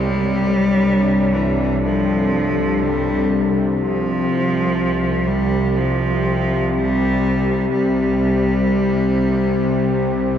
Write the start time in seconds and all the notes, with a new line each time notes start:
Already playing: C2 C3 G3 C#5
0.63 D4
1.34 E3
1.64 A4
1.84 F3
2.81 G3
3.77 C2 C3 F3
3.81 C4
5.26 G3
5.39 G4
5.76 F3
6.73 G3
6.97 C5
7.72 G3